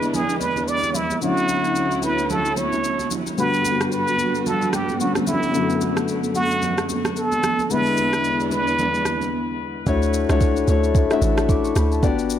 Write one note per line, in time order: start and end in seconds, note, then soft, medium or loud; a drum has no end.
0.00 1.20 E2 medium
0.00 1.17 D3 medium
0.00 1.20 E3 medium
0.00 1.18 G#3 medium
0.00 1.20 G#3 medium
0.00 1.18 B3 medium
0.00 1.20 D4 medium
0.00 1.19 E4 medium
0.00 0.16 B4 loud
0.00 shaker soft
0.14 0.41 G#4 loud
0.14 low conga medium
0.14 shaker medium
0.29 shaker soft
0.41 0.70 B4 medium
0.41 high conga medium
0.41 shaker medium
0.56 high conga medium
0.56 shaker soft
0.68 0.97 D5 loud
0.68 shaker medium
0.83 high conga medium
0.83 shaker medium
0.95 1.22 E4 medium
0.95 low conga medium
0.95 shaker medium
1.10 high conga medium
1.10 shaker medium
1.21 3.36 D2 medium
1.21 3.34 D3 medium
1.21 3.34 F#3 medium
1.21 3.36 F#3 medium
1.21 3.36 C#4 medium
1.21 3.34 C#4 medium
1.21 3.36 E4 medium
1.21 3.35 E4 medium
1.21 2.05 F#4 loud
1.21 shaker medium
1.37 shaker medium
1.48 high conga medium
1.48 shaker medium
1.64 shaker medium
1.75 shaker medium
1.91 shaker soft
2.02 2.32 B4 medium
2.02 high conga medium
2.02 shaker medium
2.18 shaker soft
2.30 2.59 A4 loud
2.30 low conga medium
2.30 shaker medium
2.45 shaker soft
2.57 3.11 C#5 medium
2.57 high conga medium
2.57 shaker medium
2.72 high conga medium
2.72 shaker soft
2.84 shaker medium
2.99 high conga medium
2.99 shaker medium
3.11 low conga medium
3.11 shaker medium
3.26 high conga medium
3.26 shaker soft
3.37 5.52 G2 medium
3.37 4.97 D3 medium
3.37 7.66 D3 medium
3.37 4.97 G3 medium
3.37 7.66 B3 medium
3.37 4.98 B3 medium
3.37 5.52 F#4 medium
3.37 4.98 F#4 medium
3.37 3.89 B4 loud
3.37 shaker medium
3.54 shaker medium
3.65 high conga medium
3.65 shaker medium
3.81 cross-stick medium
3.81 shaker medium
3.92 4.48 B4 loud
3.92 shaker medium
4.08 shaker soft
4.18 high conga medium
4.18 shaker medium
4.35 shaker soft
4.46 4.75 A4 loud
4.46 low conga medium
4.46 shaker medium
4.62 shaker soft
4.73 5.00 G4 medium
4.73 cross-stick medium
4.73 high conga medium
4.73 shaker medium
4.88 high conga medium
4.88 shaker soft
5.00 5.52 D3 soft
5.00 5.54 G3 soft
5.00 5.54 B3 soft
5.00 5.55 C#4 medium
5.00 5.13 F#4 medium
5.00 shaker medium
5.15 cross-stick medium
5.15 high conga medium
5.15 shaker medium
5.27 6.04 E4 medium
5.27 low conga medium
5.27 shaker medium
5.43 high conga medium
5.43 shaker soft
5.53 7.66 F#2 medium
5.53 7.68 F#2 medium
5.53 7.66 D3 medium
5.53 7.68 A3 medium
5.53 7.67 A3 medium
5.53 7.67 B3 medium
5.53 7.67 F#4 medium
5.53 shaker medium
5.70 shaker medium
5.81 high conga medium
5.81 shaker medium
5.97 cross-stick medium
5.97 shaker medium
6.08 shaker medium
6.24 shaker soft
6.34 6.86 F#4 loud
6.34 high conga medium
6.34 shaker medium
6.51 shaker soft
6.62 low conga medium
6.62 shaker medium
6.78 cross-stick medium
6.78 shaker soft
6.89 high conga medium
6.89 shaker medium
7.05 cross-stick medium
7.05 high conga medium
7.05 shaker soft
7.16 7.73 A4 loud
7.16 shaker medium
7.32 high conga medium
7.32 shaker medium
7.43 cross-stick medium
7.43 low conga medium
7.43 shaker loud
7.59 high conga medium
7.59 shaker medium
7.70 9.84 E2 medium
7.70 9.82 D3 medium
7.70 9.84 E3 medium
7.70 9.84 G#3 medium
7.70 9.83 G#3 medium
7.70 9.83 B3 medium
7.70 9.85 D4 medium
7.70 9.84 E4 medium
7.70 8.52 B4 loud
7.70 shaker medium
7.86 shaker medium
7.97 high conga medium
7.97 shaker medium
8.13 cross-stick medium
8.13 shaker medium
8.24 shaker medium
8.40 high conga soft
8.40 shaker soft
8.51 9.56 B4 loud
8.51 high conga medium
8.51 shaker medium
8.67 shaker soft
8.79 low conga medium
8.79 shaker medium
8.94 shaker soft
9.05 cross-stick medium
9.05 high conga medium
9.05 shaker medium
9.21 high conga medium
9.21 shaker soft
9.86 10.26 D2 loud
9.86 10.20 A3 medium
9.86 10.20 D4 medium
9.86 10.20 E4 medium
9.86 10.20 F#4 medium
9.86 10.21 C#5 loud
9.86 kick loud
9.86 shaker medium
10.02 shaker medium
10.14 shaker loud
10.29 10.65 C#2 medium
10.29 10.61 A3 loud
10.29 10.61 D4 medium
10.29 10.61 E4 medium
10.29 10.61 F#4 medium
10.29 10.62 C#5 loud
10.29 cross-stick loud
10.29 shaker medium
10.41 kick loud
10.41 shaker medium
10.56 shaker medium
10.68 11.07 D2 loud
10.68 11.01 A3 loud
10.68 11.01 D4 medium
10.68 11.01 E4 medium
10.68 11.02 F#4 medium
10.68 11.02 C#5 loud
10.68 shaker medium
10.84 shaker medium
10.95 kick loud
10.95 shaker medium
11.10 11.52 A3 loud
11.10 11.52 D4 medium
11.10 11.52 E4 medium
11.10 11.52 F#4 medium
11.10 11.53 E5 loud
11.10 cross-stick medium
11.10 shaker soft
11.22 11.72 A1 loud
11.22 shaker medium
11.38 cross-stick loud
11.38 shaker medium
11.49 11.64 D6 medium
11.49 kick loud
11.49 shaker medium
11.64 11.75 C#6 medium
11.64 shaker medium
11.76 12.04 D2 medium
11.76 11.91 B5 medium
11.76 cross-stick loud
11.76 shaker loud
11.92 12.17 A5 medium
11.92 shaker medium
12.02 12.39 G1 loud
12.02 12.36 B3 loud
12.02 12.36 D4 medium
12.02 12.36 F#4 medium
12.02 12.37 G4 medium
12.02 12.37 D5 loud
12.02 kick loud
12.02 shaker medium
12.19 shaker medium
12.30 shaker loud